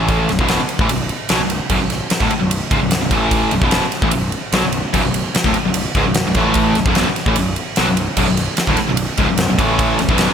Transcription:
Already playing: A1 A2 E3 A3
0.08 kick, ride
0.29 B0 B1 F#2, snare, ride
0.39 B0 B1 F#2 B2, kick
0.48 snare, ride
0.61 muted overdriven electric guitar stroke, muted picked electric bass stroke
0.69 ride
0.79 A1 A2 E3, kick
0.89 B0 B1 F#2, ride
1.09 ride
1.29 B1 B2 F#3, snare, ride
1.39 B0 B1 F#2
1.50 ride
1.70 B0 B1 F#2, kick, crash
1.81 B0 B1 F#2
1.90 snare, ride
2.10 muted overdriven electric guitar stroke, muted picked electric bass stroke, snare, ride
2.20 D1 D2 A2, kick
2.31 muted picked electric bass stroke, muted overdriven electric guitar stroke, ride
2.41 B0 B1 F#2
2.51 ride
2.71 C#1 C#2 G#2, kick, ride
2.81 B0 B1 F#2
2.91 snare, ride
3.00 B0 B1 F#2
3.11 A1 A2 E3 A3, kick, ride
3.31 kick, ride
3.51 B0 B1 F#2, ride
3.61 B0 B1 F#2 B2, kick
3.71 snare, ride
3.82 muted picked electric bass stroke, muted overdriven electric guitar stroke
3.92 snare, ride
4.02 A1 A2 E3, kick
4.11 B0 B1 F#2, ride
4.32 ride
4.52 B1 B2 F#3, snare, ride
4.63 B0 B1 F#2
4.72 ride
4.93 B0 B1 F#2, kick, crash
5.03 B0 B1 F#2
5.14 ride
5.35 muted distorted electric guitar stroke, muted overdriven electric guitar stroke, muted picked electric bass stroke, snare, ride
5.44 D1 D2 A2, kick
5.54 muted distorted electric guitar stroke, muted overdriven electric guitar stroke, muted picked electric bass stroke, ride
5.65 B0 B1 F#2
5.74 ride
5.95 C#1 C#2 G#2, kick, ride
6.06 B0 B1 F#2
6.14 snare, ride
6.26 B0 B1 F#2
6.35 A1 A2 E3 A3, kick, ride
6.54 kick, ride
6.75 B0 B1 F#2, snare, ride
6.86 B0 B1 F#2 B2, kick
6.95 snare, ride
7.06 muted distorted electric guitar stroke, muted picked electric bass stroke, muted overdriven electric guitar stroke
7.16 snare, ride
7.26 A1 A2 E3, kick
7.36 B0 B1 F#2, ride
7.56 ride
7.76 B1 B2 F#3, snare, ride
7.89 B0 B1 F#2
7.97 ride
8.17 B0 B1 F#2, kick, crash
8.28 B0 B1 F#2
8.37 snare, ride
8.57 muted overdriven electric guitar stroke, muted picked electric bass stroke, muted distorted electric guitar stroke, snare, ride
8.67 D1 D2 A2, kick
8.77 muted distorted electric guitar stroke, muted overdriven electric guitar stroke, muted picked electric bass stroke, snare, ride
8.89 B0 B1 F#2
8.97 ride
9.17 C#1 C#2 G#2, kick, ride
9.29 B0 B1 F#2
9.38 snare, ride
9.48 B0 B1 F#2
9.58 A1 A2 E3 A3, kick, ride
9.79 kick, ride
9.99 B0 B1 F#2, snare, ride
10.09 B0 B1 F#2 B2, kick
10.18 snare, ride
10.30 muted distorted electric guitar stroke, muted overdriven electric guitar stroke

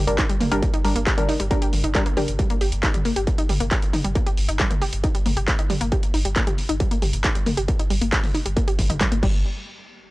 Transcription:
0.07 G1 G3 D4 A#4, closed hi-hat
0.18 D#4, kick, clap, closed hi-hat
0.29 G1 G3, closed hi-hat
0.40 A#3, open hi-hat, mid tom
0.51 G1 G3 D4 G4 A#4, closed hi-hat
0.63 kick, closed hi-hat
0.74 D#4, closed hi-hat
0.84 G1 G3 D4 A#4, open hi-hat
0.96 G1 A#3, closed hi-hat
1.07 G4, kick, clap, closed hi-hat
1.18 G1 G3 D4 A#4, closed hi-hat, mid tom
1.29 D#4, open hi-hat
1.40 G1 G3, closed hi-hat
1.51 G3 A#3 D4 A#4, kick, closed hi-hat
1.62 G4, closed hi-hat
1.73 G1, open hi-hat, mid tom
1.84 G1 D#4, closed hi-hat
1.95 G3 D4 A#4, kick, clap, closed hi-hat
2.06 G1 A#3, closed hi-hat
2.17 G3 D4 G4 A#4, open hi-hat, mid tom
2.28 G1, closed hi-hat
2.39 G3, kick, closed hi-hat
2.50 A#3, closed hi-hat
2.61 G1 G4, open hi-hat
2.72 G1, closed hi-hat
2.83 D#4, kick, clap, closed hi-hat
2.94 G1 G3, closed hi-hat, mid tom
3.05 A#3, open hi-hat
3.16 G1 G4, closed hi-hat
3.27 kick, closed hi-hat
3.38 D#4, closed hi-hat
3.49 G1 G3, open hi-hat, mid tom
3.60 G1 A#3, closed hi-hat
3.71 G4, kick, clap, closed hi-hat
3.82 G1, closed hi-hat
3.93 D#4, open hi-hat, mid tom
4.04 G1 G3, closed hi-hat
4.15 A#3, kick, closed hi-hat
4.26 G4, closed hi-hat
4.38 G1, open hi-hat
4.49 G1 D#4, closed hi-hat
4.60 G3, kick, clap, closed hi-hat
4.71 G1 A#3, closed hi-hat, mid tom
4.82 G4, open hi-hat
4.93 G1, closed hi-hat
5.04 D#4, kick, closed hi-hat
5.15 G3, closed hi-hat
5.26 G1 A#3, open hi-hat, mid tom
5.37 G1 G4, closed hi-hat
5.48 kick, clap, closed hi-hat
5.59 G1 D#4, closed hi-hat
5.70 G3, open hi-hat, mid tom
5.81 G1 A#3, closed hi-hat
5.92 G4, kick, closed hi-hat
6.03 closed hi-hat
6.14 G1 D#4, open hi-hat
6.25 G1 G3, closed hi-hat
6.36 A#3, kick, clap, closed hi-hat
6.47 G1 G4, closed hi-hat, mid tom
6.58 open hi-hat
6.69 G1 D#4, closed hi-hat
6.80 G3, kick, closed hi-hat
6.91 A#3, closed hi-hat
7.02 G1 G4, open hi-hat, mid tom
7.13 G1, closed hi-hat
7.24 D#4, kick, clap, closed hi-hat
7.35 G1 G3, closed hi-hat
7.46 A#3, open hi-hat, mid tom
7.57 G1 G4, closed hi-hat
7.68 kick, closed hi-hat
7.79 D#4, closed hi-hat
7.90 G1 G3, open hi-hat
8.01 G1 A#3, closed hi-hat
8.12 G4, kick, clap, closed hi-hat
8.24 G1, open hi-hat, mid tom
8.34 D#4, open hi-hat
8.46 G1 G3, closed hi-hat
8.57 A#3, kick, closed hi-hat
8.68 G4, closed hi-hat
8.79 G1, kick, open hi-hat, mid tom
8.90 G1 D#4, closed hi-hat, mid tom
9.01 G3, kick, clap, closed hi-hat
9.12 G1 A#3, closed hi-hat
9.23 G1 G3, kick, crash

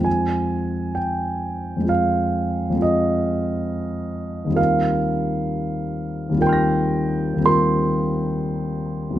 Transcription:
Already playing: F2 G#3 C4
0.01 F4 G#5
0.95 G5
1.77 F2 G#3
1.83 C4 F4
1.89 F5
2.70 F2 G#3
2.75 C4 F4
2.82 D#5
4.45 D#2 G3
4.50 C4 F4
4.56 A#4 F5
6.29 D#2 G3
6.35 C4 F4
6.41 A#4 G5
6.47 C6 F6
6.53 A#6
7.34 D#2 G3
7.40 C4 F4
7.46 A#4 C6
9.10 B1 F#3
9.16 B3

